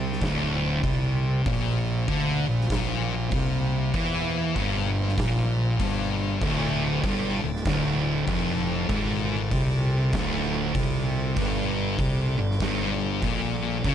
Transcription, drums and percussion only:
0.12 snare
0.22 kick, snare, open hi-hat
0.83 kick, open hi-hat
1.46 kick, open hi-hat
2.08 kick, open hi-hat
2.61 snare
2.70 kick, snare, open hi-hat
3.31 kick, open hi-hat
3.94 kick, open hi-hat
4.56 kick, open hi-hat
5.09 snare
5.18 kick, snare, open hi-hat
5.80 kick, open hi-hat
6.41 kick, open hi-hat
7.04 kick, open hi-hat
7.56 snare
7.65 kick, snare, open hi-hat
8.28 kick, open hi-hat
8.89 kick, open hi-hat
9.51 kick, open hi-hat
10.13 kick, snare, open hi-hat
10.75 kick, open hi-hat
11.36 kick, open hi-hat
11.99 kick, open hi-hat
12.51 snare
12.60 kick, snare, open hi-hat
13.22 kick, open hi-hat
13.85 kick, open hi-hat

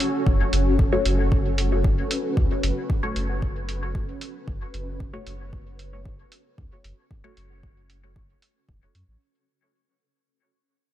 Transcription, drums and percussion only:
0.00 closed hi-hat
0.27 kick
0.53 closed hi-hat
0.79 kick
1.05 closed hi-hat
1.32 kick
1.58 closed hi-hat
1.84 kick
2.11 closed hi-hat
2.37 kick
2.63 closed hi-hat
2.90 kick
3.16 closed hi-hat
3.42 kick
3.69 closed hi-hat
3.95 kick
4.21 closed hi-hat
4.48 kick
4.74 closed hi-hat
5.00 kick
5.27 closed hi-hat
5.53 kick
5.79 closed hi-hat
6.05 kick
6.32 closed hi-hat
6.58 kick
6.84 closed hi-hat
7.11 kick
7.37 closed hi-hat
7.63 kick
7.90 closed hi-hat
8.16 kick
8.42 closed hi-hat
8.69 kick
8.95 closed hi-hat

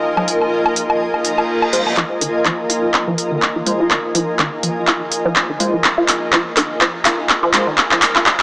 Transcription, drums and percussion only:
0.17 low conga, low woodblock
0.28 open hi-hat
0.41 low woodblock
0.66 low woodblock
0.76 open hi-hat
0.90 low woodblock
1.14 low woodblock
1.25 open hi-hat
1.38 low woodblock
1.62 low woodblock
1.73 open hi-hat
1.87 low woodblock
1.97 kick, clap
2.21 open hi-hat
2.46 kick, clap
2.70 open hi-hat
2.94 kick, clap
3.18 open hi-hat
3.42 kick, clap
3.66 open hi-hat
3.91 kick, clap
4.15 open hi-hat
4.39 kick, clap
4.63 open hi-hat
4.87 kick, clap
5.12 open hi-hat
5.36 kick, clap
5.60 open hi-hat
5.84 kick, clap
6.08 clap, open hi-hat
6.33 kick, clap
6.57 clap, open hi-hat
6.81 kick, clap
7.05 clap, open hi-hat
7.29 kick, clap
7.54 clap, open hi-hat
7.78 kick, clap
7.91 clap
8.02 clap, open hi-hat
8.16 clap
8.26 kick, clap

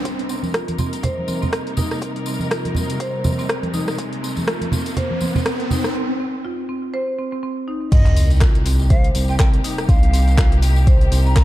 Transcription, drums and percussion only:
0.05 kick, closed hi-hat, tambourine
0.19 closed hi-hat
0.29 tambourine
0.43 tambourine, high conga
0.54 kick, cross-stick, closed hi-hat, tambourine
0.68 closed hi-hat, high conga
0.78 tambourine, low conga
0.93 closed hi-hat, tambourine
1.03 kick, closed hi-hat, tambourine, low conga
1.18 high conga
1.28 tambourine, high conga
1.42 tambourine, low conga
1.52 kick, cross-stick, closed hi-hat, tambourine
1.67 closed hi-hat
1.77 tambourine, low conga
1.91 cross-stick, tambourine
2.02 kick, closed hi-hat, tambourine
2.16 closed hi-hat
2.26 tambourine
2.40 tambourine, high conga
2.51 kick, cross-stick, closed hi-hat, tambourine
2.65 closed hi-hat, high conga
2.75 tambourine, low conga
2.90 closed hi-hat, tambourine
3.00 kick, closed hi-hat, tambourine
3.24 tambourine, high conga, low conga
3.39 tambourine
3.49 kick, cross-stick, closed hi-hat, tambourine
3.63 closed hi-hat, high conga
3.74 tambourine, high conga
3.88 cross-stick, tambourine
3.98 kick, closed hi-hat, tambourine
4.13 closed hi-hat
4.24 tambourine
4.37 tambourine, high conga
4.48 kick, cross-stick, closed hi-hat, tambourine
4.61 closed hi-hat, high conga
4.72 tambourine, low conga
4.86 closed hi-hat, tambourine
4.97 kick, closed hi-hat, tambourine, low conga
5.11 high conga
5.21 tambourine, high conga
5.35 tambourine, low conga
5.46 kick, cross-stick, closed hi-hat, tambourine
5.60 closed hi-hat
5.71 tambourine, low conga
5.84 cross-stick, tambourine
7.92 kick, closed hi-hat, tambourine, crash
8.06 clap, closed hi-hat
8.16 open hi-hat, tambourine
8.30 closed hi-hat, tambourine
8.41 kick, cross-stick, clap, closed hi-hat, tambourine
8.55 closed hi-hat
8.66 open hi-hat, tambourine
8.79 tambourine
8.90 kick, closed hi-hat, tambourine
9.04 closed hi-hat
9.15 open hi-hat, tambourine
9.28 tambourine
9.39 kick, cross-stick, clap, closed hi-hat, tambourine
9.54 closed hi-hat
9.64 open hi-hat, tambourine
9.78 cross-stick, closed hi-hat, tambourine
9.89 kick, closed hi-hat, tambourine
10.03 closed hi-hat
10.14 open hi-hat, tambourine
10.28 closed hi-hat, tambourine
10.38 kick, cross-stick, clap, closed hi-hat
10.52 closed hi-hat
10.62 open hi-hat, tambourine
10.76 tambourine
10.87 kick, closed hi-hat, tambourine
11.01 closed hi-hat
11.12 open hi-hat, tambourine
11.26 tambourine
11.36 kick, cross-stick, clap, closed hi-hat, tambourine

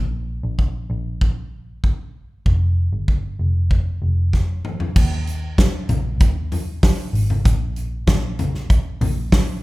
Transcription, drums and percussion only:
0.59 kick
1.21 kick
1.84 kick
2.46 kick
3.08 kick
3.71 kick
4.33 kick, snare
4.65 mid tom
4.80 floor tom
4.96 kick, crash
5.27 hi-hat pedal, open hi-hat
5.58 kick, snare, hi-hat pedal, open hi-hat
5.89 floor tom, hi-hat pedal, open hi-hat
6.20 kick, hi-hat pedal, open hi-hat
6.52 floor tom, hi-hat pedal, open hi-hat
6.83 kick, snare, hi-hat pedal, open hi-hat
7.14 hi-hat pedal, open hi-hat
7.30 floor tom
7.45 kick, hi-hat pedal, open hi-hat
7.76 hi-hat pedal, open hi-hat
8.07 kick, snare, hi-hat pedal, open hi-hat
8.39 floor tom, hi-hat pedal, open hi-hat
8.54 snare
8.70 kick, hi-hat pedal, open hi-hat
9.01 floor tom, hi-hat pedal, open hi-hat
9.32 kick, snare, hi-hat pedal, open hi-hat

